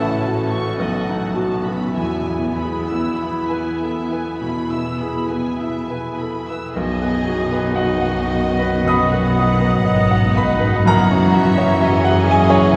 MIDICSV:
0, 0, Header, 1, 13, 480
1, 0, Start_track
1, 0, Key_signature, 4, "major"
1, 0, Tempo, 1075269
1, 353, Tempo, 1151631
1, 833, Time_signature, 4, 2, 24, 8
1, 833, Tempo, 1219512
1, 2273, Tempo, 1145038
1, 2751, Key_signature, 5, "major"
1, 2753, Tempo, 1015228
1, 3233, Tempo, 1107011
1, 3713, Tempo, 1006711
1, 4193, Tempo, 974026
1, 5153, Tempo, 928793
1, 5639, End_track
2, 0, Start_track
2, 0, Title_t, "Flute"
2, 0, Program_c, 0, 73
2, 3237, Note_on_c, 0, 78, 50
2, 3714, Note_on_c, 0, 87, 64
2, 3721, Note_off_c, 0, 78, 0
2, 4427, Note_off_c, 0, 87, 0
2, 4430, Note_on_c, 0, 83, 70
2, 4675, Note_on_c, 0, 82, 80
2, 4682, Note_off_c, 0, 83, 0
2, 5392, Note_on_c, 0, 80, 75
2, 5400, Note_off_c, 0, 82, 0
2, 5626, Note_off_c, 0, 80, 0
2, 5639, End_track
3, 0, Start_track
3, 0, Title_t, "Violin section"
3, 0, Program_c, 1, 48
3, 0, Note_on_c, 1, 78, 35
3, 0, Note_on_c, 1, 81, 41
3, 100, Note_off_c, 1, 81, 0
3, 106, Note_on_c, 1, 81, 36
3, 107, Note_off_c, 1, 78, 0
3, 227, Note_on_c, 1, 85, 35
3, 229, Note_off_c, 1, 81, 0
3, 348, Note_on_c, 1, 75, 34
3, 348, Note_on_c, 1, 78, 38
3, 350, Note_off_c, 1, 85, 0
3, 458, Note_off_c, 1, 75, 0
3, 460, Note_off_c, 1, 78, 0
3, 465, Note_on_c, 1, 78, 34
3, 584, Note_off_c, 1, 78, 0
3, 584, Note_on_c, 1, 81, 31
3, 704, Note_on_c, 1, 83, 34
3, 706, Note_off_c, 1, 81, 0
3, 831, Note_off_c, 1, 83, 0
3, 834, Note_on_c, 1, 76, 36
3, 834, Note_on_c, 1, 80, 34
3, 946, Note_off_c, 1, 76, 0
3, 949, Note_off_c, 1, 80, 0
3, 954, Note_on_c, 1, 80, 31
3, 1076, Note_off_c, 1, 80, 0
3, 1077, Note_on_c, 1, 83, 32
3, 1198, Note_off_c, 1, 83, 0
3, 1201, Note_on_c, 1, 88, 31
3, 1318, Note_on_c, 1, 83, 35
3, 1322, Note_off_c, 1, 88, 0
3, 1440, Note_off_c, 1, 83, 0
3, 1442, Note_on_c, 1, 80, 32
3, 1562, Note_off_c, 1, 80, 0
3, 1563, Note_on_c, 1, 76, 32
3, 1681, Note_off_c, 1, 76, 0
3, 1684, Note_on_c, 1, 80, 32
3, 1794, Note_on_c, 1, 83, 34
3, 1801, Note_off_c, 1, 80, 0
3, 1906, Note_off_c, 1, 83, 0
3, 1916, Note_on_c, 1, 88, 30
3, 2032, Note_on_c, 1, 83, 29
3, 2035, Note_off_c, 1, 88, 0
3, 2146, Note_on_c, 1, 80, 30
3, 2152, Note_off_c, 1, 83, 0
3, 2263, Note_on_c, 1, 76, 33
3, 2267, Note_off_c, 1, 80, 0
3, 2391, Note_off_c, 1, 76, 0
3, 2395, Note_on_c, 1, 80, 30
3, 2517, Note_on_c, 1, 83, 30
3, 2521, Note_off_c, 1, 80, 0
3, 2639, Note_off_c, 1, 83, 0
3, 2642, Note_on_c, 1, 88, 33
3, 2748, Note_on_c, 1, 68, 49
3, 2752, Note_off_c, 1, 88, 0
3, 3210, Note_off_c, 1, 68, 0
3, 3234, Note_on_c, 1, 66, 49
3, 3700, Note_off_c, 1, 66, 0
3, 3705, Note_on_c, 1, 66, 52
3, 3949, Note_off_c, 1, 66, 0
3, 3951, Note_on_c, 1, 63, 48
3, 4182, Note_off_c, 1, 63, 0
3, 4188, Note_on_c, 1, 63, 53
3, 4664, Note_off_c, 1, 63, 0
3, 4671, Note_on_c, 1, 66, 60
3, 5149, Note_off_c, 1, 66, 0
3, 5149, Note_on_c, 1, 68, 67
3, 5639, Note_off_c, 1, 68, 0
3, 5639, End_track
4, 0, Start_track
4, 0, Title_t, "Violin section"
4, 0, Program_c, 2, 48
4, 2756, Note_on_c, 2, 75, 44
4, 3215, Note_off_c, 2, 75, 0
4, 3235, Note_on_c, 2, 75, 52
4, 3704, Note_off_c, 2, 75, 0
4, 3722, Note_on_c, 2, 78, 50
4, 4673, Note_off_c, 2, 78, 0
4, 4679, Note_on_c, 2, 78, 61
4, 4913, Note_off_c, 2, 78, 0
4, 4916, Note_on_c, 2, 76, 70
4, 5151, Note_off_c, 2, 76, 0
4, 5154, Note_on_c, 2, 75, 60
4, 5633, Note_off_c, 2, 75, 0
4, 5639, End_track
5, 0, Start_track
5, 0, Title_t, "Oboe"
5, 0, Program_c, 3, 68
5, 2754, Note_on_c, 3, 75, 44
5, 4657, Note_off_c, 3, 75, 0
5, 4681, Note_on_c, 3, 73, 60
5, 5639, Note_off_c, 3, 73, 0
5, 5639, End_track
6, 0, Start_track
6, 0, Title_t, "Grand piano"
6, 0, Program_c, 4, 0
6, 0, Control_c, 4, 64, 127
6, 0, Note_on_c, 4, 33, 46
6, 6, Note_on_c, 4, 64, 43
6, 118, Note_on_c, 4, 66, 41
6, 190, Note_off_c, 4, 64, 0
6, 241, Note_on_c, 4, 61, 32
6, 307, Note_off_c, 4, 66, 0
6, 340, Note_off_c, 4, 33, 0
6, 354, Note_on_c, 4, 35, 47
6, 357, Note_off_c, 4, 61, 0
6, 360, Control_c, 4, 64, 0
6, 432, Control_c, 4, 64, 127
6, 478, Note_on_c, 4, 63, 34
6, 592, Note_on_c, 4, 66, 36
6, 663, Note_off_c, 4, 63, 0
6, 723, Note_on_c, 4, 59, 30
6, 785, Note_off_c, 4, 66, 0
6, 819, Note_off_c, 4, 35, 0
6, 840, Note_off_c, 4, 59, 0
6, 842, Control_c, 4, 64, 0
6, 844, Note_on_c, 4, 40, 36
6, 905, Control_c, 4, 64, 127
6, 972, Note_on_c, 4, 64, 33
6, 1099, Note_on_c, 4, 68, 34
6, 1158, Note_off_c, 4, 64, 0
6, 1215, Note_on_c, 4, 59, 31
6, 1283, Note_off_c, 4, 68, 0
6, 1338, Note_on_c, 4, 64, 31
6, 1402, Note_off_c, 4, 59, 0
6, 1446, Note_on_c, 4, 71, 39
6, 1522, Note_off_c, 4, 64, 0
6, 1571, Note_on_c, 4, 69, 25
6, 1635, Note_off_c, 4, 71, 0
6, 1685, Note_off_c, 4, 69, 0
6, 1690, Note_on_c, 4, 71, 35
6, 1788, Note_off_c, 4, 40, 0
6, 1806, Note_on_c, 4, 47, 32
6, 1875, Note_off_c, 4, 71, 0
6, 1929, Note_on_c, 4, 64, 33
6, 1992, Note_off_c, 4, 47, 0
6, 2039, Note_on_c, 4, 68, 34
6, 2113, Note_off_c, 4, 64, 0
6, 2156, Note_on_c, 4, 59, 29
6, 2226, Note_off_c, 4, 68, 0
6, 2275, Note_on_c, 4, 64, 35
6, 2347, Note_off_c, 4, 59, 0
6, 2398, Note_on_c, 4, 71, 34
6, 2473, Note_off_c, 4, 64, 0
6, 2527, Note_on_c, 4, 69, 30
6, 2595, Note_off_c, 4, 71, 0
6, 2644, Note_off_c, 4, 69, 0
6, 2651, Note_on_c, 4, 71, 34
6, 2757, Note_off_c, 4, 71, 0
6, 2760, Control_c, 4, 64, 0
6, 2761, Note_on_c, 4, 35, 49
6, 2837, Control_c, 4, 64, 127
6, 2882, Note_on_c, 4, 59, 42
6, 3001, Note_on_c, 4, 66, 45
6, 3068, Note_off_c, 4, 59, 0
6, 3121, Note_on_c, 4, 71, 46
6, 3188, Note_off_c, 4, 66, 0
6, 3230, Note_on_c, 4, 78, 59
6, 3234, Note_on_c, 4, 75, 46
6, 3238, Note_on_c, 4, 66, 48
6, 3305, Note_off_c, 4, 71, 0
6, 3336, Note_off_c, 4, 78, 0
6, 3343, Note_on_c, 4, 78, 53
6, 3420, Note_off_c, 4, 75, 0
6, 3470, Note_on_c, 4, 75, 50
6, 3541, Note_off_c, 4, 78, 0
6, 3592, Note_on_c, 4, 71, 53
6, 3665, Note_off_c, 4, 75, 0
6, 3697, Note_off_c, 4, 66, 0
6, 3698, Note_off_c, 4, 35, 0
6, 3705, Note_on_c, 4, 42, 43
6, 3717, Note_on_c, 4, 87, 70
6, 3722, Note_on_c, 4, 75, 57
6, 3723, Note_on_c, 4, 83, 54
6, 3787, Note_off_c, 4, 71, 0
6, 3832, Note_on_c, 4, 59, 46
6, 3906, Note_off_c, 4, 42, 0
6, 3961, Note_on_c, 4, 66, 50
6, 4025, Note_off_c, 4, 59, 0
6, 4067, Note_on_c, 4, 71, 44
6, 4146, Note_off_c, 4, 66, 0
6, 4174, Note_off_c, 4, 75, 0
6, 4181, Note_on_c, 4, 75, 55
6, 4260, Note_off_c, 4, 71, 0
6, 4309, Note_on_c, 4, 78, 57
6, 4379, Note_off_c, 4, 75, 0
6, 4416, Note_off_c, 4, 87, 0
6, 4420, Note_off_c, 4, 83, 0
6, 4431, Note_on_c, 4, 75, 55
6, 4437, Note_on_c, 4, 83, 69
6, 4442, Note_on_c, 4, 71, 56
6, 4504, Note_off_c, 4, 78, 0
6, 4543, Note_off_c, 4, 71, 0
6, 4550, Note_on_c, 4, 71, 54
6, 4626, Note_off_c, 4, 75, 0
6, 4661, Note_off_c, 4, 83, 0
6, 4673, Note_on_c, 4, 42, 61
6, 4674, Note_off_c, 4, 71, 0
6, 4683, Control_c, 4, 64, 0
6, 4685, Note_on_c, 4, 82, 84
6, 4689, Note_on_c, 4, 70, 58
6, 4689, Note_on_c, 4, 78, 58
6, 4771, Control_c, 4, 64, 127
6, 4799, Note_on_c, 4, 61, 53
6, 4917, Note_on_c, 4, 66, 60
6, 4988, Note_off_c, 4, 61, 0
6, 5031, Note_on_c, 4, 73, 61
6, 5105, Note_off_c, 4, 66, 0
6, 5147, Note_on_c, 4, 76, 67
6, 5223, Note_off_c, 4, 73, 0
6, 5260, Note_off_c, 4, 78, 0
6, 5268, Note_on_c, 4, 78, 74
6, 5343, Note_off_c, 4, 76, 0
6, 5378, Note_off_c, 4, 82, 0
6, 5378, Note_on_c, 4, 76, 64
6, 5380, Note_off_c, 4, 70, 0
6, 5405, Note_on_c, 4, 80, 86
6, 5411, Note_on_c, 4, 68, 62
6, 5463, Note_off_c, 4, 78, 0
6, 5503, Note_on_c, 4, 73, 75
6, 5577, Note_off_c, 4, 76, 0
6, 5609, Note_off_c, 4, 42, 0
6, 5616, Note_on_c, 4, 49, 59
6, 5621, Note_off_c, 4, 80, 0
6, 5624, Note_off_c, 4, 68, 0
6, 5637, Note_off_c, 4, 73, 0
6, 5639, Note_off_c, 4, 49, 0
6, 5639, End_track
7, 0, Start_track
7, 0, Title_t, "Clarinet"
7, 0, Program_c, 5, 71
7, 0, Note_on_c, 5, 69, 67
7, 589, Note_on_c, 5, 66, 50
7, 595, Note_off_c, 5, 69, 0
7, 830, Note_off_c, 5, 66, 0
7, 833, Note_on_c, 5, 64, 50
7, 2256, Note_off_c, 5, 64, 0
7, 2758, Note_on_c, 5, 66, 49
7, 4659, Note_off_c, 5, 66, 0
7, 4674, Note_on_c, 5, 66, 64
7, 5639, Note_off_c, 5, 66, 0
7, 5639, End_track
8, 0, Start_track
8, 0, Title_t, "French horn section"
8, 0, Program_c, 6, 60
8, 2754, Note_on_c, 6, 66, 48
8, 2755, Note_on_c, 6, 59, 50
8, 4657, Note_off_c, 6, 66, 0
8, 4658, Note_off_c, 6, 59, 0
8, 4675, Note_on_c, 6, 61, 59
8, 4679, Note_on_c, 6, 66, 59
8, 5639, Note_off_c, 6, 61, 0
8, 5639, Note_off_c, 6, 66, 0
8, 5639, End_track
9, 0, Start_track
9, 0, Title_t, "Viola section"
9, 0, Program_c, 7, 48
9, 0, Note_on_c, 7, 61, 46
9, 0, Note_on_c, 7, 66, 41
9, 334, Note_off_c, 7, 61, 0
9, 356, Note_on_c, 7, 59, 43
9, 832, Note_on_c, 7, 64, 39
9, 836, Note_off_c, 7, 66, 0
9, 2651, Note_off_c, 7, 64, 0
9, 2670, Note_off_c, 7, 59, 0
9, 2749, Note_on_c, 7, 63, 47
9, 3693, Note_off_c, 7, 63, 0
9, 3706, Note_on_c, 7, 59, 53
9, 4179, Note_off_c, 7, 59, 0
9, 4186, Note_on_c, 7, 59, 64
9, 4426, Note_off_c, 7, 59, 0
9, 4432, Note_on_c, 7, 63, 59
9, 4666, Note_off_c, 7, 63, 0
9, 4672, Note_on_c, 7, 63, 54
9, 5140, Note_off_c, 7, 63, 0
9, 5145, Note_on_c, 7, 61, 62
9, 5615, Note_off_c, 7, 61, 0
9, 5621, Note_on_c, 7, 61, 77
9, 5639, Note_off_c, 7, 61, 0
9, 5639, End_track
10, 0, Start_track
10, 0, Title_t, "Bassoon"
10, 0, Program_c, 8, 70
10, 2753, Note_on_c, 8, 51, 49
10, 4657, Note_off_c, 8, 51, 0
10, 4679, Note_on_c, 8, 52, 56
10, 5639, Note_off_c, 8, 52, 0
10, 5639, End_track
11, 0, Start_track
11, 0, Title_t, "Trombone section"
11, 0, Program_c, 10, 61
11, 2752, Note_on_c, 10, 42, 51
11, 2758, Note_on_c, 10, 54, 52
11, 4656, Note_off_c, 10, 42, 0
11, 4660, Note_off_c, 10, 54, 0
11, 4677, Note_on_c, 10, 52, 64
11, 4678, Note_on_c, 10, 42, 63
11, 5639, Note_off_c, 10, 42, 0
11, 5639, Note_off_c, 10, 52, 0
11, 5639, End_track
12, 0, Start_track
12, 0, Title_t, "Cello section"
12, 0, Program_c, 11, 48
12, 0, Note_on_c, 11, 45, 45
12, 271, Note_off_c, 11, 45, 0
12, 356, Note_on_c, 11, 47, 42
12, 751, Note_off_c, 11, 47, 0
12, 832, Note_on_c, 11, 40, 41
12, 1238, Note_off_c, 11, 40, 0
12, 1800, Note_on_c, 11, 47, 41
12, 2193, Note_off_c, 11, 47, 0
12, 2753, Note_on_c, 11, 47, 49
12, 4173, Note_off_c, 11, 47, 0
12, 4192, Note_on_c, 11, 44, 51
12, 4674, Note_on_c, 11, 42, 62
12, 4676, Note_off_c, 11, 44, 0
12, 5639, Note_off_c, 11, 42, 0
12, 5639, End_track
13, 0, Start_track
13, 0, Title_t, "Double bass section"
13, 0, Program_c, 12, 48
13, 2746, Note_on_c, 12, 35, 49
13, 4169, Note_off_c, 12, 35, 0
13, 4186, Note_on_c, 12, 32, 58
13, 4670, Note_on_c, 12, 30, 63
13, 4673, Note_off_c, 12, 32, 0
13, 5639, Note_off_c, 12, 30, 0
13, 5639, End_track
0, 0, End_of_file